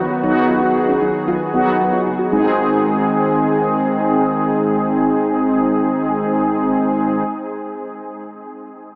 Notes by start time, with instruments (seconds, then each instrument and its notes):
Already playing: analog synth pad D#3 F#3 B3 F#4
0.10 synth arpeggio sound F#4
0.23 analog synth bass B1, analog polysynth F#3 B3 D#4 F#4, synth arpeggio sound D#4, analog synth pad G#4
0.49 analog synth bass B1, synth arpeggio sound F4
0.62 analog synth bass B1, synth arpeggio sound D#4
0.89 analog synth bass B1, synth arpeggio sound C#4
1.02 analog synth bass B1, synth arpeggio sound D#4
1.28 analog synth bass B1, synth arpeggio sound F4
1.54 analog synth bass B1, analog polysynth F#3 B3 D#4 F#4, synth arpeggio sound D#4
1.67 analog synth bass B1
1.80 analog synth bass B1
1.93 synth arpeggio sound F4
2.06 analog synth bass F#1
2.19 synth arpeggio sound F#4
2.32 analog synth bass G#1, analog synth pad D#3 G#3 C4 G#4, analog polysynth G#3 C4 D#4 G#4, synth arpeggio sound G#3
2.36 synth arpeggio sound C4 D#4
2.44 synth arpeggio sound G#4